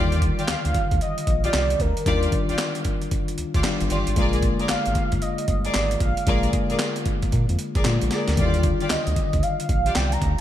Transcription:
Already playing: analog synth bass D#2, tine electric piano D3 D#3 G3 F4, string section F4 G4 D5
0.12 closed hi-hat
0.22 kick, closed hi-hat
0.38 string section F4 G4 D5, closed hi-hat
0.48 analog synth bass D2, soft synth lead F5, snare, clap, closed hi-hat
0.65 analog synth bass D2, closed hi-hat
0.74 kick, closed hi-hat
0.91 analog synth bass D2, kick, closed hi-hat
1.01 soft synth lead D#5, closed hi-hat
1.18 closed hi-hat
1.27 analog synth bass A#1, kick, closed hi-hat
1.44 string section F4 G4 D5, soft synth lead D5, closed hi-hat
1.53 analog synth bass C2, snare, clap, closed hi-hat
1.70 closed hi-hat
1.80 analog synth bass D2, soft synth lead A#4, kick, closed hi-hat
1.97 closed hi-hat
2.06 analog synth bass D#2, tine electric piano D#3 G3 D4 F4, string section F4 G4 D5, kick, closed hi-hat
2.23 closed hi-hat
2.32 kick, closed hi-hat
2.49 analog synth bass D2, string section F4 G4 D5, closed hi-hat
2.58 snare, clap, closed hi-hat
2.75 closed hi-hat
2.85 kick, closed hi-hat
3.02 closed hi-hat
3.11 kick, closed hi-hat
3.28 closed hi-hat
3.38 analog synth bass D2, closed hi-hat
3.54 analog synth bass D2, string section F4 G4 D5, kick, closed hi-hat
3.64 tine electric piano D#3 G3 D4 F4, snare, clap, closed hi-hat
3.81 analog synth bass G1, closed hi-hat
3.90 analog synth bass G1, string section F4 G4 D5, closed hi-hat
4.07 analog synth bass G#1, closed hi-hat
4.16 analog synth bass A#1, tine electric piano D3 G#3 A#3 F4, string section G#4 A#4 D5, kick, closed hi-hat
4.33 closed hi-hat
4.42 kick, closed hi-hat
4.59 string section G#4 A#4 D5, closed hi-hat
4.69 analog synth bass G#1, soft synth lead F5, snare, clap, closed hi-hat
4.86 analog synth bass G#1, closed hi-hat
4.95 kick, closed hi-hat
5.12 analog synth bass G#1, kick, closed hi-hat
5.22 soft synth lead D#5, closed hi-hat
5.38 closed hi-hat
5.48 analog synth bass G1, kick, closed hi-hat
5.65 string section G#4 A#4 D5, soft synth lead D5, closed hi-hat
5.74 analog synth bass G#1, snare, clap, closed hi-hat
5.91 closed hi-hat
6.00 analog synth bass A#1, soft synth lead F5, kick, closed hi-hat
6.17 closed hi-hat
6.26 analog synth bass A#1, tine electric piano D3 G#3 A#3 F4, string section G#4 A#4 D5, kick, closed hi-hat
6.43 closed hi-hat
6.53 kick, closed hi-hat
6.70 analog synth bass A#2, string section G#4 A#4 D5, closed hi-hat
6.79 snare, clap, closed hi-hat
6.96 closed hi-hat
7.06 kick, closed hi-hat
7.22 kick, closed hi-hat
7.32 analog synth bass A#2, kick, closed hi-hat
7.49 analog synth bass F2, closed hi-hat
7.59 closed hi-hat
7.75 analog synth bass A#1, string section G#4 A#4 D5, kick, closed hi-hat
7.85 analog synth bass A#2, tine electric piano D3 G#3 A#3 F4, snare, clap, closed hi-hat
8.01 analog synth bass A#1, closed hi-hat
8.11 string section G#4 A#4 D5, snare, closed hi-hat
8.28 analog synth bass D2, snare, closed hi-hat
8.37 analog synth bass D#2, tine electric piano D3 D#3 G3 E4, string section F4 G4 D5, kick, closed hi-hat
8.46 tine electric piano F4
8.54 closed hi-hat
8.63 kick, closed hi-hat
8.80 string section F4 G4 D5, closed hi-hat
8.90 analog synth bass D2, soft synth lead D#5, snare, clap, closed hi-hat
9.07 analog synth bass D2, closed hi-hat
9.16 kick, closed hi-hat
9.33 analog synth bass D2, kick, closed hi-hat
9.43 soft synth lead F5, closed hi-hat
9.60 closed hi-hat
9.69 analog synth bass A#1, kick, closed hi-hat
9.86 string section F4 G4 D5, closed hi-hat
9.95 analog synth bass C2, soft synth lead G5, snare, clap, closed hi-hat
10.12 soft synth lead A#5, closed hi-hat
10.22 analog synth bass D2, kick, closed hi-hat

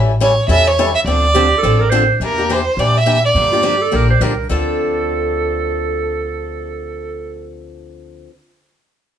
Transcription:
Already playing: upright bass A1, steel-string acoustic guitar E3 G3 C#4 E4 A4
0.20 steel-string acoustic guitar E3 G3 C#4 E4 A4, violin C#5
0.48 upright bass E2, steel-string acoustic guitar E3 G3 C#4 E4 A4, violin E5
0.67 violin C#5
0.79 steel-string acoustic guitar E3 G3 C#4 E4 A4
0.95 violin E5
1.05 upright bass D2, steel-string acoustic guitar D3 F3 C4 D4 A4, violin D5
1.35 steel-string acoustic guitar D3 F3 C4 D4 A4, clarinet G4
1.58 clarinet A4
1.63 upright bass A1, steel-string acoustic guitar D3 F3 C4 D4 A4, clarinet A4
1.80 clarinet A#4
1.90 steel-string acoustic guitar D3 F3 C4 D4 A4, clarinet C5
2.20 upright bass E2, steel-string acoustic guitar E3 A#3 D4 G4
2.24 violin A#4
2.38 steel-string acoustic guitar A#3 D4 G4
2.49 steel-string acoustic guitar E3 A#3 D4 G4, violin C5
2.77 upright bass A#2, steel-string acoustic guitar E3 A#3 D4 G4, violin D5
2.98 violin E5
3.06 steel-string acoustic guitar E3 A#3 D4 G4
3.25 violin D5
3.35 upright bass G2, steel-string acoustic guitar D3 F3 A#3 D4 G4
3.52 steel-string acoustic guitar A#3 D4 G4, clarinet F4
3.63 steel-string acoustic guitar D3 F3 A#3 D4 G4, clarinet G4
3.81 clarinet A4
3.91 upright bass A#1, steel-string acoustic guitar D3 F3 A#3 D4 G4, clarinet A#4
4.10 clarinet C5
4.21 upright bass C2, steel-string acoustic guitar D3 F3 A#3 D4 G4, clarinet A#4
4.49 upright bass D2, steel-string acoustic guitar D3 F3 C4 D4 A4, clarinet A4

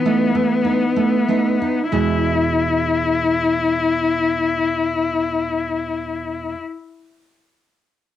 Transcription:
Already playing: nylon-string guitar E3, cello B3
0.05 nylon-string guitar A3 D#4
0.35 nylon-string guitar A3
0.65 nylon-string guitar D#4
0.96 nylon-string guitar A3
1.29 nylon-string guitar A3 D#4
1.62 nylon-string guitar D#4
1.92 nylon-string guitar E2 B2 G#3 B3 E4 G#4, cello E4

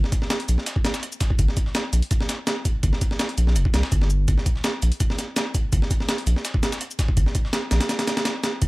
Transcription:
0.04 snare
0.12 kick, closed hi-hat, shaker
0.22 snare
0.30 snare, closed hi-hat, shaker
0.40 closed hi-hat
0.48 sub bass A#1, closed hi-hat, shaker
0.58 snare
0.66 snare, closed hi-hat, shaker
0.76 kick
0.84 snare, closed hi-hat, shaker
0.94 snare, shaker
1.03 closed hi-hat
1.12 shaker
1.21 kick, snare, closed hi-hat, shaker
1.30 kick
1.39 sub bass G1, kick, closed hi-hat, shaker
1.48 snare
1.57 kick, closed hi-hat, shaker
1.66 snare
1.75 snare, closed hi-hat, shaker
1.93 sub bass A#1, closed hi-hat, shaker
2.02 closed hi-hat
2.11 kick, closed hi-hat, shaker
2.21 snare
2.29 snare, closed hi-hat, shaker
2.47 snare, closed hi-hat, shaker
2.65 kick, closed hi-hat, shaker
2.83 sub bass G1, kick, closed hi-hat, shaker
2.93 snare
3.01 kick, closed hi-hat, shaker
3.11 snare
3.19 snare, closed hi-hat, shaker
3.29 closed hi-hat
3.38 sub bass A#1, closed hi-hat, shaker
3.47 snare
3.56 sub bass F1, closed hi-hat, shaker
3.65 kick
3.74 sub bass C2, snare, closed hi-hat, shaker
3.83 snare
3.92 sub bass G1, kick, closed hi-hat, shaker
4.01 snare
4.10 shaker
4.28 sub bass G1, kick, closed hi-hat, shaker
4.38 snare
4.46 kick, closed hi-hat, shaker
4.55 snare
4.64 snare, closed hi-hat, shaker
4.82 sub bass A#1, closed hi-hat, shaker
4.92 closed hi-hat
5.00 kick, closed hi-hat, shaker
5.10 snare
5.18 snare, closed hi-hat, shaker
5.36 snare, closed hi-hat, shaker
5.54 kick, closed hi-hat, shaker
5.72 sub bass G1, kick, closed hi-hat, shaker
5.82 snare
5.90 kick, closed hi-hat, shaker
6.00 snare
6.09 snare, closed hi-hat, shaker
6.18 closed hi-hat
6.27 sub bass A#1, closed hi-hat, shaker
6.36 snare
6.45 snare, closed hi-hat, shaker
6.54 kick
6.63 snare, closed hi-hat, shaker
6.72 snare, shaker
6.81 closed hi-hat
6.91 shaker
6.99 kick, snare, closed hi-hat, shaker
7.08 kick
7.17 sub bass G1, kick, closed hi-hat, shaker
7.26 snare
7.35 kick, closed hi-hat, shaker
7.45 snare
7.53 snare, closed hi-hat, shaker
7.71 sub bass A#1, snare, closed hi-hat, shaker
7.81 snare, closed hi-hat
7.89 snare, closed hi-hat, shaker
7.99 snare, closed hi-hat
8.07 snare, closed hi-hat, shaker
8.17 snare, closed hi-hat
8.25 snare, closed hi-hat, shaker
8.44 snare, closed hi-hat, shaker
8.62 sub bass G1, kick, closed hi-hat, shaker

